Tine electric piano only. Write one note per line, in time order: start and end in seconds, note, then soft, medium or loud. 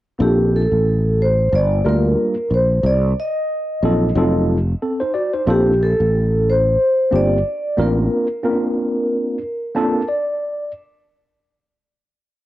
0.19 0.60 A#3 medium
0.19 0.61 C4 medium
0.19 0.61 D4 medium
0.19 0.61 F4 medium
0.19 0.61 A4 medium
1.84 2.33 G3 medium
1.84 1.92 A3 medium
1.84 2.33 D4 medium
1.84 2.34 F4 medium
1.84 2.34 A#4 medium
1.91 2.36 A#3 medium
3.83 4.08 F#3 medium
3.83 4.08 C4 medium
3.83 4.08 D#4 medium
3.83 4.08 F4 medium
3.83 4.09 A4 medium
4.15 4.56 F#3 medium
4.15 4.56 C4 medium
4.15 4.57 D#4 medium
4.15 4.57 F4 medium
4.15 4.57 A4 medium
4.82 5.00 C4 medium
4.82 5.00 A4 medium
5.00 5.14 D#4 medium
5.00 5.14 C5 medium
5.14 5.33 F#4 medium
5.14 5.32 D5 medium
5.33 5.65 D#4 soft
5.33 5.65 C5 medium
5.46 5.72 A#3 medium
5.46 5.72 C4 medium
5.46 5.72 D4 medium
5.46 5.72 F4 medium
5.46 5.73 A4 medium
7.11 7.37 A#3 medium
7.11 7.37 C4 medium
7.11 7.37 D4 medium
7.11 7.37 F4 medium
7.11 7.37 G4 medium
7.77 8.26 A#3 medium
7.77 8.26 C4 medium
7.77 8.27 D4 medium
7.77 8.27 F4 medium
7.77 8.27 A#4 medium
8.43 9.37 A#3 medium
8.43 9.37 C4 medium
8.43 8.51 C#4 soft
8.43 9.38 F4 medium
8.43 9.38 A#4 medium
8.51 9.41 D4 medium
9.75 10.00 A#3 medium
9.75 10.00 C4 medium
9.75 10.01 D4 medium
9.75 10.01 F4 medium
9.75 10.01 A4 medium
9.75 10.07 A5 medium
10.09 10.71 D5 medium